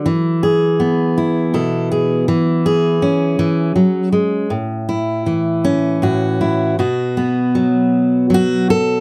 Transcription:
0.06 E3
0.43 G#4
0.80 B3
1.18 E4
1.54 B2 A4
1.91 G#4
2.28 E3
2.66 G#4
3.02 C#4
3.39 E3
3.76 F#3
4.12 G#3
4.50 A2
4.89 E4
5.26 E3
5.65 C#4
6.02 A2 F#4
6.41 E4
6.79 B2 F#4
7.17 B3
7.55 F#3
8.30 F#3
8.34 F#4
8.70 A4

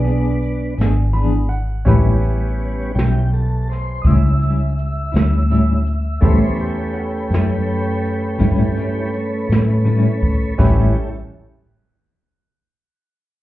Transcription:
Already playing: B1 B3 D4 F#4 G#4 B4
0.04 B3 D4 G#4, closed hi-hat
0.42 closed hi-hat
0.77 G#1 B3 D4 G#4, snare, closed hi-hat
1.13 E3 B3 D4 G#4 B5, closed hi-hat
1.49 F#5, closed hi-hat
1.85 A1 A2 G3 B3 C#4 E4 G4 B4, kick, closed hi-hat
2.23 closed hi-hat
2.59 closed hi-hat
2.95 B1 G3 C#4 E4 G4, snare, closed hi-hat
3.32 A4, closed hi-hat
3.69 C5, snare, closed hi-hat
4.02 C#2 A2 G3 D#5, kick, closed hi-hat
4.06 C#4 E4 E5
4.39 G3 C#4 E4, closed hi-hat
4.78 closed hi-hat
5.12 D2 G3 C#4 E4, closed hi-hat
5.16 snare
5.49 A2 G3 C#4 E4, closed hi-hat
5.86 closed hi-hat
6.21 E2 A2 G3 A3 C#4 E4 G4 A4 B4 C5, kick, closed hi-hat
6.59 G4, closed hi-hat
6.94 F#4 G4, closed hi-hat
7.30 F#2 G3 C#4 E4, snare, closed hi-hat
7.68 closed hi-hat
8.04 closed hi-hat
8.39 G2 A2 G3 C#4 E4, kick, closed hi-hat
8.74 G3 C#4 E4, closed hi-hat
9.13 closed hi-hat
9.48 A2 G3 C#4 E4, closed hi-hat
9.52 snare
9.85 A2 G3 C#4 E4, closed hi-hat
10.22 kick, closed hi-hat
10.58 A1 A2 G3 C#4 E4 G4 A4 B4, kick, crash

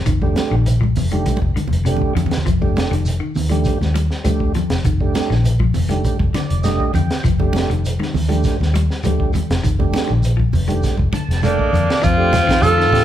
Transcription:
0.06 F1 D#3, kick, closed hi-hat, shekere
0.22 A3 D4 G4, kick, high conga
0.36 snare, closed hi-hat, high conga, shekere
0.51 A#1 D#3
0.66 closed hi-hat, shekere
0.81 F3, kick, high conga
0.95 F1, open hi-hat, low conga, shekere
1.11 D#3 A3 D4 G4, closed hi-hat, high conga
1.26 kick, closed hi-hat, high conga, shekere
1.37 high conga
1.42 F1, kick
1.56 D3, muted fingered electric bass stroke, closed hi-hat, high conga, shekere
1.68 F1, low conga
1.73 closed hi-hat
1.85 C3 A3 D4 G4, closed hi-hat, shekere
1.96 low conga
2.02 kick
2.15 F2 D3, closed hi-hat, low conga, shekere
2.26 low conga
2.31 snare, closed hi-hat
2.38 low conga
2.46 F1 F3, kick, closed hi-hat, shekere
2.61 A3 D4 G4, kick, high conga
2.76 snare, closed hi-hat, high conga, shekere
2.91 F1 D#3, closed hi-hat
3.06 closed hi-hat, shekere
3.20 D#3
3.35 D#2, open hi-hat, low conga, shekere
3.49 F3 A3 D4 G4, closed hi-hat, high conga
3.64 kick, closed hi-hat, shekere
3.81 D#2, snare, high conga
3.94 G3, closed hi-hat, high conga, shekere
4.11 snare
4.24 D2 F3 A3 D4 G4, closed hi-hat, high conga, shekere
4.40 kick
4.54 F3, closed hi-hat, low conga, shekere
4.70 F1, snare, closed hi-hat
4.84 F1 D#3, kick, closed hi-hat, shekere
5.00 A3 D4 G4, kick
5.15 snare, closed hi-hat, high conga, shekere
5.30 A#1 D#3, snare
5.45 closed hi-hat, shekere
5.60 F3, kick, high conga
5.74 F1, open hi-hat, low conga, shekere
5.89 D#3 A3 D4 G4, closed hi-hat, high conga
6.05 kick, closed hi-hat, shekere
6.19 F1, kick, high conga
6.34 D3 D5, muted fingered electric bass stroke, snare, closed hi-hat, high conga, shekere
6.50 F1, closed hi-hat
6.64 G2 A3 D4 G4 D#5, snare, closed hi-hat, high conga, shekere
6.80 kick
6.94 F2 D3 G5, closed hi-hat, low conga, shekere
7.10 snare, closed hi-hat
7.24 F1 F3, kick, closed hi-hat, shekere
7.39 A3 D4 G4, kick, low conga
7.53 snare, closed hi-hat, high conga, shekere
7.70 F1 D#3, closed hi-hat
7.85 closed hi-hat, shekere
8.00 D#3, snare, high conga
8.14 D#2, open hi-hat, low conga, shekere
8.28 F3 A3 D4 G4, closed hi-hat, high conga
8.43 kick, snare, closed hi-hat, shekere
8.60 D#2, snare, high conga
8.74 G3, closed hi-hat, high conga, shekere
8.90 snare
9.03 D2 F3 A3 D4 G4, closed hi-hat, high conga, shekere
9.20 kick
9.33 muted clean electric guitar stroke, closed hi-hat, high conga, low conga, shekere
9.50 F1, snare, closed hi-hat
9.63 F1 D#3, kick, closed hi-hat, shekere
9.79 A3 D4 G4, kick, high conga, low conga
9.93 snare, closed hi-hat, high conga, shekere
10.08 A#1 D#3
10.23 closed hi-hat, shekere
10.37 F3, kick
10.53 F1, open hi-hat, low conga, shekere
10.68 D#3 A3 D4 G4, closed hi-hat, high conga
10.83 kick, snare, closed hi-hat, shekere
10.97 F1, kick, high conga
11.12 D3 A5, muted fingered electric bass stroke, closed hi-hat, high conga, shekere
11.28 F1, snare, closed hi-hat
11.43 C3 A3 A#3 D4 A4 G5, closed hi-hat, high conga, shekere
11.59 D#5, kick
11.73 F2 D3 D5, closed hi-hat, low conga, shekere
11.90 snare, closed hi-hat
12.02 F2 F3 C4 F4, kick, closed hi-hat, high conga, shekere
12.17 A3 D4 G4
12.33 snare, closed hi-hat, high conga, low conga, shekere
12.47 D#3, kick, snare, closed hi-hat, shekere
12.62 F2 A3 D4 F4 G4 A4, closed hi-hat, high conga, shekere
12.78 D#3, snare
12.91 A2 A3 D4 G4, open hi-hat, low conga, shekere
12.95 snare

